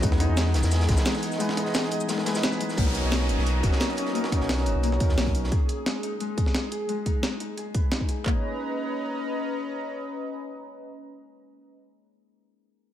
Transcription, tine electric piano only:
0.01 0.25 G#3 loud
0.01 0.26 B3 medium
0.01 0.27 D#4 medium
0.01 0.27 E4 medium
0.01 0.28 B4 loud
0.26 0.84 G#3 medium
0.26 0.86 B3 medium
0.26 0.87 D#4 medium
0.30 0.88 E3 medium
0.30 0.88 D#5 medium
0.86 1.37 G#3 medium
0.86 1.38 B3 medium
0.86 1.38 D#4 medium
0.90 1.39 E3 medium
0.90 1.40 B4 medium
1.38 1.62 G#3 medium
1.38 1.63 B3 medium
1.38 1.64 D#4 medium
1.38 1.65 E4 medium
1.38 1.65 B4 loud
1.63 2.21 G#3 medium
1.63 2.23 B3 medium
1.63 2.24 D#4 medium
1.68 2.25 E3 medium
1.68 2.26 D#5 medium
2.23 2.74 G#3 medium
2.23 2.75 B3 medium
2.23 2.75 D#4 medium
2.28 2.76 E4 medium
2.28 2.77 B4 medium
2.76 2.99 F#3 medium
2.76 3.01 B3 medium
2.76 3.01 C#4 medium
2.76 3.02 D#4 medium
2.76 3.02 A#4 loud
3.00 3.59 F#3 medium
3.00 3.61 C#4 medium
3.05 3.62 D#4 medium
3.05 3.63 C#5 medium
3.60 4.11 F#3 medium
3.60 4.13 C#4 medium
3.65 4.14 D#4 medium
3.65 4.14 A#4 medium
4.13 4.36 F#3 medium
4.13 4.38 B3 medium
4.13 4.39 C#4 medium
4.13 4.39 D#4 medium
4.13 4.39 A#4 medium
4.38 4.96 F#3 medium
4.38 4.98 C#4 medium
4.43 4.99 D#4 medium
4.43 5.00 C#5 medium
4.97 5.48 F#3 medium
4.97 5.50 C#4 medium
5.02 5.51 D#4 medium
5.02 5.52 A#4 medium

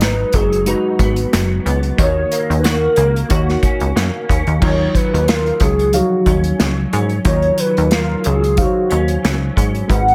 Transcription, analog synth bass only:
0.00 0.25 G#1 medium
0.34 0.75 F#1 loud
0.99 1.26 G#1 medium
1.34 1.60 F#1 medium
1.66 1.92 C#2 medium
1.99 2.25 D#2 loud
2.50 2.88 D#2 medium
2.97 3.24 C#2 medium
3.31 3.57 D#2 medium
3.63 3.70 C#2 soft
3.81 3.93 C#2 medium
3.96 4.11 F#2 medium
4.29 4.44 D#2 medium
4.47 4.59 D#2 medium
4.62 4.88 D#2 loud
5.14 5.52 D#2 medium
5.61 6.02 C#2 medium
6.26 6.53 D#2 medium
6.60 6.86 C#2 medium
6.93 7.19 G#2 medium
7.25 7.52 D#2 loud
7.78 8.16 D#2 medium
8.26 8.66 C#2 medium
8.92 9.18 D#2 medium
9.25 9.50 C#2 medium
9.57 9.83 G#2 medium
9.90 10.15 G#1 loud

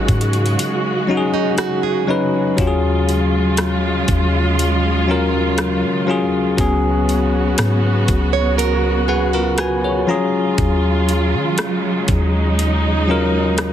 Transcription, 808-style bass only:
0.09 0.57 G#2 loud
2.59 4.05 D#2 loud
4.09 5.86 D#2 loud
5.84 6.23 D#3 medium
6.21 6.57 D#2 medium
6.59 7.55 C#2 loud
7.59 8.07 G#2 loud
8.09 10.05 C#2 loud
10.59 11.35 D#2 loud
11.34 11.57 D#3 medium
12.09 13.73 D#2 loud

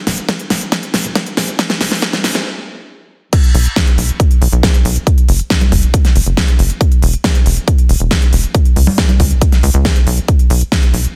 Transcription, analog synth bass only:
0.07 0.20 E1 loud
0.50 0.63 E1 medium
0.94 1.00 E1 medium
1.04 1.18 E1 medium
1.37 1.50 E1 medium
1.81 1.94 C#2 loud
2.24 2.37 C#2 medium
3.55 3.68 B1 loud
3.98 4.11 B1 medium
4.42 4.48 B1 medium
4.52 4.66 B1 medium
4.85 4.98 B1 loud
5.29 5.42 F#1 medium
5.72 5.85 F#1 medium
6.16 6.22 F#1 medium
6.26 6.39 F#1 medium
6.59 6.72 F#1 loud
7.02 7.16 E1 loud
7.46 7.59 E1 medium
7.89 7.96 E1 medium
8.00 8.13 E1 medium
8.33 8.46 E1 loud
8.76 8.89 C#2 loud
9.20 9.33 C#2 medium
9.63 9.70 C#2 loud
9.74 9.87 C#2 loud
10.07 10.20 B1 medium
10.50 10.63 B1 loud
10.94 11.07 B1 medium

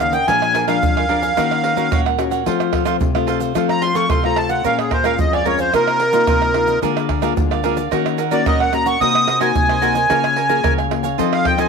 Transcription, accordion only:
0.00 0.13 F5 medium
0.13 0.26 G5 medium
0.27 0.65 G#5 loud
0.68 2.01 F5 medium
3.69 3.82 A#5 medium
3.81 3.95 C6 loud
3.95 4.09 C#6 medium
4.10 4.23 C6 medium
4.25 4.37 A#5 medium
4.37 4.50 A5 medium
4.50 4.64 F#5 medium
4.65 4.78 F5 medium
4.79 4.92 G#4 medium
4.92 5.05 C5 medium
5.05 5.19 F5 medium
5.20 5.33 D#5 medium
5.34 5.46 D5 medium
5.46 5.60 C#5 medium
5.60 5.73 C5 medium
5.75 6.79 A#4 loud
8.32 8.46 D5 medium
8.47 8.60 D#5 medium
8.61 8.74 F#5 medium
8.74 8.87 A#5 medium
8.87 9.00 C#6 medium
9.01 9.39 D#6 loud
9.41 10.74 G#5 medium
11.33 11.46 F5 medium
11.46 11.59 G5 loud
11.60 11.69 G#5 medium

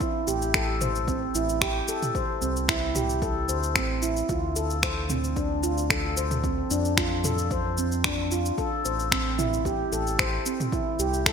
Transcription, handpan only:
0.01 0.15 E4 loud
0.27 0.41 G4 loud
0.55 0.68 A4 loud
0.81 1.07 C5 medium
1.08 1.34 C4 medium
1.35 1.49 E4 loud
1.62 1.75 G4 loud
1.89 2.02 A4 loud
2.15 2.41 C5 medium
2.42 2.67 C4 medium
2.69 2.82 E4 loud
2.96 3.09 G4 medium
3.23 3.36 A4 loud
3.49 3.75 C5 medium
3.76 4.02 C4 medium
4.02 4.16 E4 medium
4.29 4.43 F4 loud
4.56 4.70 A4 medium
4.83 5.09 C5 medium
5.10 5.35 C4 medium
5.36 5.50 D4 loud
5.63 5.77 F4 loud
5.90 6.04 A4 medium
6.17 6.43 C5 medium
6.44 6.70 C4 medium
6.71 6.84 D4 loud
6.98 7.11 F4 loud
7.25 7.38 A4 loud
7.52 7.77 C5 medium
7.78 8.04 C4 medium
8.05 8.18 D4 loud
8.32 8.45 F4 medium
8.58 8.72 A4 loud
8.85 9.11 C5 medium
9.12 9.38 C4 medium
9.39 9.52 E4 medium
9.66 9.79 G4 loud
9.92 10.06 A4 loud
10.19 10.45 C5 medium
10.46 10.72 C4 medium
10.73 10.87 E4 loud
11.00 11.13 G4 loud
11.27 11.33 A4 loud

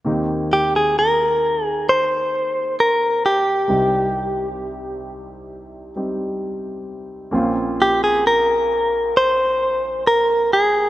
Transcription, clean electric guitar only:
0.53 0.75 G4 soft
0.76 0.98 G#4 medium
0.99 1.65 A#4 medium
1.65 1.89 G#4 medium
1.89 2.75 C5 medium
2.80 3.25 A#4 medium
3.26 5.93 G4 medium
7.82 8.03 G4 medium
8.04 8.26 G#4 medium
8.27 9.17 A#4 medium
9.17 10.07 C5 medium
10.07 10.53 A#4 medium
10.53 10.89 G#4 medium

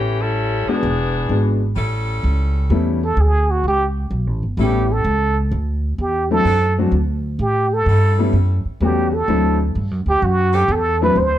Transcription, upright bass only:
0.00 0.64 A1 medium
0.67 muted upright bass stroke soft
0.83 1.27 E1 medium
1.29 1.73 G#1 medium
1.76 2.22 A1 medium
2.23 2.69 C#2 medium
2.70 3.16 E2 medium
3.17 3.63 D2 medium
3.64 4.10 C#2 medium
4.11 4.27 B1 medium
4.27 4.42 A1 medium
4.43 4.57 G1 medium
4.57 5.03 A1 medium
5.04 5.51 C#2 medium
5.51 5.98 D2 medium
5.98 6.44 E2 medium
6.45 6.91 F#2 medium
6.92 7.38 D2 medium
7.39 7.85 A2 medium
7.86 8.32 G2 medium
8.33 8.63 F#2 medium
8.65 muted upright bass stroke soft
8.80 9.27 E2 medium
9.28 9.74 D2 medium
9.75 9.91 G2 medium
9.91 10.05 F#2 medium
10.06 10.21 D2 medium
10.22 10.68 F#2 medium
10.68 11.14 E2 medium
11.16 11.39 D2 medium

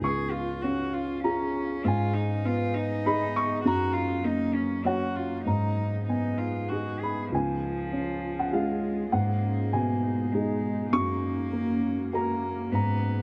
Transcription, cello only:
0.03 0.32 G#4 medium
0.31 0.64 F4 medium
0.62 0.95 F#4 medium
0.93 1.23 F4 soft
1.24 1.87 C#4 medium
1.85 2.15 F4 medium
2.14 2.47 D#4 medium
2.46 2.76 F4 medium
2.74 3.63 D#4 medium
3.64 3.95 F#4 medium
3.93 4.26 F4 medium
4.25 4.55 D#4 medium
4.54 4.87 C#4 soft
4.86 5.17 F#4 medium
5.16 5.44 F4 soft
5.44 6.00 D#4 soft
6.06 6.39 D#4 soft
6.38 6.70 F4 soft
6.68 7.01 F#4 soft
7.00 7.31 G#4 soft
7.31 8.54 F3 medium
8.53 9.13 G#3 soft
9.13 10.34 A#3 medium
10.32 10.90 G#3 medium
10.91 12.08 A#3 medium
12.11 12.73 A#3 medium
12.72 13.22 B3 soft

